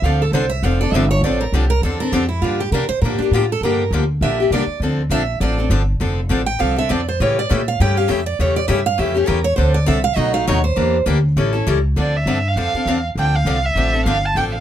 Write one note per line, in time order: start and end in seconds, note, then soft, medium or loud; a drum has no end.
0.02 0.31 D2 medium
0.02 0.23 D3 medium
0.02 0.23 F3 medium
0.02 0.23 C4 medium
0.02 0.24 D4 medium
0.02 0.24 A4 medium
0.02 0.21 F5 loud
0.22 0.33 A4 medium
0.32 0.62 C2 medium
0.32 0.44 D3 medium
0.32 0.44 F3 medium
0.32 0.45 C4 medium
0.32 0.45 D4 loud
0.32 0.45 A4 loud
0.32 0.50 C5 medium
0.50 0.63 E5 medium
0.63 0.91 F1 medium
0.63 0.80 D3 medium
0.63 0.80 F3 medium
0.63 0.80 C4 medium
0.63 0.81 D4 medium
0.63 0.80 A4 medium
0.63 0.80 F5 medium
0.81 0.94 C4 soft
0.81 0.94 D4 soft
0.81 0.93 A4 medium
0.81 0.93 D5 medium
0.92 1.21 G1 loud
0.92 1.04 D3 medium
0.92 1.05 F3 loud
0.92 1.04 C4 medium
0.92 1.05 D4 loud
0.92 1.10 E5 medium
0.96 1.05 A4 medium
1.11 1.23 C#5 medium
1.21 1.51 A1 medium
1.21 1.43 D3 medium
1.21 1.43 F3 medium
1.21 1.43 C4 medium
1.21 1.40 D5 medium
1.26 1.44 D4 medium
1.26 1.44 A4 medium
1.41 1.53 A#4 medium
1.52 1.81 C2 medium
1.52 1.64 D3 medium
1.52 1.64 F3 medium
1.52 1.64 C4 medium
1.52 1.64 D4 medium
1.52 1.70 G4 medium
1.52 1.65 A4 medium
1.70 1.82 A#4 loud
1.82 2.11 E2 medium
1.82 2.00 D3 medium
1.82 2.00 F3 medium
1.82 2.00 C4 medium
1.82 2.00 D4 medium
1.82 2.00 A4 medium
2.00 2.12 C4 medium
2.00 2.13 D4 medium
2.00 2.13 A4 medium
2.00 2.12 A#4 loud
2.12 2.41 F2 medium
2.12 2.23 D3 medium
2.12 2.23 F3 medium
2.12 2.23 C4 loud
2.12 2.24 D4 medium
2.12 2.28 G4 medium
2.12 2.24 A4 loud
2.29 2.42 E4 medium
2.41 2.71 G2 medium
2.41 2.62 D3 medium
2.41 2.62 F3 medium
2.41 2.62 A#3 medium
2.41 2.62 D4 medium
2.41 2.59 F4 medium
2.41 2.62 G4 medium
2.60 2.72 G4 medium
2.72 2.88 C3 medium
2.72 2.84 D3 medium
2.72 2.83 F3 medium
2.72 2.84 A#3 medium
2.72 2.84 D4 medium
2.72 2.84 G4 medium
2.72 2.88 A#4 medium
2.89 3.01 C5 loud
2.89 muted upright bass stroke soft
3.02 3.18 A#2 medium
3.02 3.20 D3 medium
3.02 3.20 F3 medium
3.02 3.20 A#3 medium
3.02 3.20 D4 medium
3.02 3.20 G4 medium
3.02 3.19 A#4 medium
3.19 3.31 D4 medium
3.19 3.33 D4 medium
3.19 3.33 G4 medium
3.19 muted upright bass stroke soft
3.24 3.33 A#3 soft
3.31 3.60 A2 medium
3.31 3.44 D3 medium
3.31 3.44 F3 medium
3.31 3.44 A#3 medium
3.31 3.49 F4 medium
3.35 3.44 D4 medium
3.35 3.44 G4 loud
3.52 3.63 A4 medium
3.61 3.90 G2 medium
3.61 3.82 D3 medium
3.61 3.82 F3 medium
3.61 3.82 A#3 medium
3.61 3.90 A#4 medium
3.65 3.82 D4 medium
3.65 3.82 G4 medium
3.91 4.20 D2 medium
3.91 4.03 D3 medium
3.91 4.03 F3 medium
3.91 4.03 A#3 medium
3.91 4.03 D4 medium
3.91 4.03 G4 medium
4.21 4.50 A#1 medium
4.21 4.38 D3 medium
4.21 4.39 F3 medium
4.21 4.39 A#3 medium
4.21 4.39 D4 medium
4.21 4.39 G4 medium
4.21 4.50 E5 medium
4.40 4.51 A#3 soft
4.40 4.53 D4 medium
4.40 4.52 G4 medium
4.51 4.66 C2 medium
4.51 4.62 D3 medium
4.51 4.62 F3 medium
4.51 4.62 A#3 medium
4.51 4.63 D4 loud
4.51 4.63 G4 loud
4.51 4.80 D5 medium
4.67 muted upright bass stroke soft
4.80 5.09 D2 medium
4.80 5.01 D3 medium
4.80 5.01 F3 medium
4.80 5.01 C4 medium
4.80 5.01 D4 medium
4.80 5.01 A4 medium
5.10 5.39 A#1 medium
5.10 5.21 D3 medium
5.10 5.21 F3 medium
5.10 5.22 C4 medium
5.10 5.22 D4 loud
5.10 5.22 A4 loud
5.10 5.39 E5 medium
5.40 5.69 A1 medium
5.40 5.58 D3 medium
5.40 5.58 F3 medium
5.40 5.58 C4 medium
5.40 5.58 D4 medium
5.40 5.57 A4 medium
5.40 5.69 D5 medium
5.59 5.70 C4 soft
5.59 5.70 D4 medium
5.59 5.70 A4 medium
5.70 5.99 G1 loud
5.70 5.81 D3 medium
5.70 5.81 F3 medium
5.70 5.81 C4 loud
5.70 5.81 D4 loud
5.70 5.82 A4 loud
6.00 6.29 F1 medium
6.00 6.19 D3 medium
6.00 6.20 F3 medium
6.00 6.20 C4 medium
6.00 6.20 D4 medium
6.00 6.20 A4 medium
6.29 6.59 A1 medium
6.29 6.40 D3 medium
6.29 6.41 F3 medium
6.29 6.41 C4 medium
6.29 6.41 D4 medium
6.29 6.41 A4 loud
6.46 6.60 G5 loud
6.59 6.90 C2 medium
6.59 6.76 D3 medium
6.59 6.76 F3 medium
6.59 6.76 C4 medium
6.59 6.77 D4 medium
6.59 6.75 A4 medium
6.59 6.77 F5 medium
6.76 6.89 C4 soft
6.76 6.89 D4 medium
6.76 6.88 A4 medium
6.76 6.90 E5 medium
6.89 7.19 F2 medium
6.89 7.00 D3 medium
6.89 7.00 F3 medium
6.89 7.00 C4 medium
6.89 7.00 D4 loud
6.89 7.00 A4 medium
6.89 7.07 D5 medium
7.08 7.20 C5 medium
7.20 7.49 A2 medium
7.20 7.39 C#3 medium
7.20 7.39 E3 medium
7.20 7.39 A3 medium
7.20 7.39 C#4 medium
7.20 7.40 G4 medium
7.20 7.38 C#5 medium
7.39 7.50 D5 medium
7.49 7.79 A#2 medium
7.49 7.60 C#3 medium
7.49 7.60 E3 medium
7.49 7.60 A3 medium
7.49 7.60 C#4 medium
7.49 7.61 G4 loud
7.49 7.68 E5 medium
7.68 7.80 F5 loud
7.80 8.09 G2 medium
7.80 7.96 C#3 medium
7.80 7.96 E3 medium
7.80 7.96 A3 medium
7.80 7.96 C#4 medium
7.80 7.96 G4 medium
7.80 7.97 G5 loud
7.97 8.08 A3 soft
7.97 8.07 C#4 medium
7.97 8.08 G4 medium
7.97 8.11 F5 medium
8.08 8.38 F2 loud
8.08 8.19 C#3 medium
8.08 8.19 E3 medium
8.08 8.19 A3 medium
8.08 8.19 C#4 medium
8.08 8.20 G4 medium
8.08 8.26 E5 medium
8.26 8.39 D5 medium
8.39 8.68 E2 medium
8.39 8.58 C#3 medium
8.39 8.58 E3 medium
8.39 8.58 A3 medium
8.39 8.59 C#4 medium
8.39 8.59 G4 medium
8.39 8.56 C#5 medium
8.56 8.67 D5 medium
8.68 8.98 G2 loud
8.68 8.79 C#3 medium
8.68 8.79 E3 medium
8.68 8.79 A3 loud
8.68 8.79 C#4 loud
8.68 8.79 G4 loud
8.68 8.85 E5 medium
8.86 8.99 F5 loud
8.98 9.28 F2 medium
8.98 9.15 C#3 medium
8.98 9.15 E3 medium
8.98 9.15 A3 medium
8.98 9.14 C#4 medium
8.98 9.13 G4 medium
8.98 9.16 E5 medium
9.14 9.26 A3 medium
9.14 9.26 C#4 medium
9.14 9.26 G4 medium
9.14 9.27 G4 medium
9.26 9.57 E2 medium
9.26 9.38 C#3 medium
9.26 9.38 E3 loud
9.26 9.38 A3 loud
9.26 9.38 C#4 medium
9.26 9.38 G4 loud
9.26 9.45 A#4 medium
9.44 9.56 C#5 loud
9.56 9.87 D2 medium
9.56 9.77 D3 medium
9.56 9.77 F3 medium
9.56 9.77 C4 medium
9.56 9.77 D4 medium
9.56 9.78 A4 medium
9.56 9.74 C5 medium
9.74 9.87 D5 medium
9.86 10.16 C2 medium
9.86 9.98 D3 loud
9.86 9.98 F3 medium
9.86 9.98 C4 loud
9.86 9.98 D4 medium
9.86 9.98 A4 loud
9.86 10.04 E5 medium
10.04 10.16 F5 loud
10.16 10.46 B1 loud
10.16 10.33 B2 medium
10.16 10.33 F#3 medium
10.16 10.34 A3 medium
10.16 10.33 D#4 medium
10.16 10.32 F#4 medium
10.16 10.33 D#5 medium
10.33 10.47 A3 medium
10.33 10.47 D#4 medium
10.33 10.47 F#4 medium
10.33 10.47 F5 loud
10.47 10.76 D#2 loud
10.47 10.58 B2 loud
10.47 10.58 F#3 loud
10.47 10.58 A3 loud
10.47 10.59 D#4 loud
10.47 10.59 F#4 loud
10.47 10.63 C#5 medium
10.64 11.04 C5 medium
10.76 11.06 E2 medium
10.76 10.96 E3 medium
10.76 10.96 A#3 medium
10.76 10.96 D4 medium
10.76 10.96 G4 medium
11.06 11.36 D2 medium
11.06 11.17 E3 medium
11.06 11.17 A#3 loud
11.06 11.17 D4 medium
11.06 11.18 G4 loud
11.37 11.66 A1 medium
11.37 11.54 E3 medium
11.37 11.54 G3 medium
11.37 11.54 C#4 medium
11.37 11.53 E4 medium
11.37 11.52 A4 medium
11.53 11.66 C#4 soft
11.53 11.67 E4 medium
11.53 11.66 A4 medium
11.67 11.96 C#2 medium
11.67 11.77 E3 loud
11.67 11.78 G3 loud
11.67 11.78 C#4 loud
11.67 11.78 E4 loud
11.67 11.78 A4 loud
11.96 12.25 D2 medium
11.96 12.16 D3 medium
11.96 12.16 F3 medium
11.96 12.16 C4 medium
11.96 12.16 D4 medium
11.96 12.16 A4 medium
11.96 12.18 D5 medium
12.16 12.49 E5 medium
12.26 12.55 G2 medium
12.26 12.37 D3 medium
12.26 12.38 F3 medium
12.26 12.37 C4 medium
12.26 12.38 D4 medium
12.26 12.38 A4 medium
12.48 12.59 F5 medium
12.56 12.72 F2 medium
12.56 12.73 D3 medium
12.56 12.73 F3 medium
12.56 12.73 C4 medium
12.56 12.74 D4 medium
12.56 12.74 A4 medium
12.56 13.02 F5 medium
12.74 12.87 C4 soft
12.74 12.87 D4 soft
12.74 12.87 A4 medium
12.74 muted upright bass stroke soft
12.86 13.15 E2 medium
12.86 12.97 D3 medium
12.86 12.97 F3 medium
12.86 12.98 C4 medium
12.86 12.98 D4 medium
12.86 12.98 A4 loud
13.15 13.44 D2 medium
13.15 13.36 D3 medium
13.15 13.36 F3 medium
13.15 13.36 C4 medium
13.15 13.37 D4 medium
13.15 13.36 A4 medium
13.15 13.37 G5 medium
13.36 13.66 F5 loud
13.45 13.75 C2 medium
13.45 13.57 D3 medium
13.45 13.57 F3 medium
13.45 13.57 C4 medium
13.45 13.57 D4 medium
13.45 13.57 A4 medium
13.65 14.06 E5 loud
13.75 14.05 A1 medium
13.75 13.92 D3 medium
13.75 13.93 F3 medium
13.75 13.93 C4 medium
13.75 13.93 D4 medium
13.75 13.93 A4 medium
13.94 14.06 C4 soft
13.94 14.06 D4 medium
13.94 14.06 A4 medium
14.05 14.35 G1 medium
14.05 14.16 D3 medium
14.05 14.17 F3 medium
14.05 14.17 C4 medium
14.05 14.17 D4 medium
14.05 14.17 A4 medium
14.05 14.27 F5 medium
14.26 14.36 A5 medium
14.35 14.60 A1 medium
14.35 14.55 D3 medium
14.35 14.55 F3 medium
14.35 14.55 C4 medium
14.35 14.55 D4 medium
14.35 14.55 A4 medium
14.35 14.44 G5 medium
14.53 14.60 F5 medium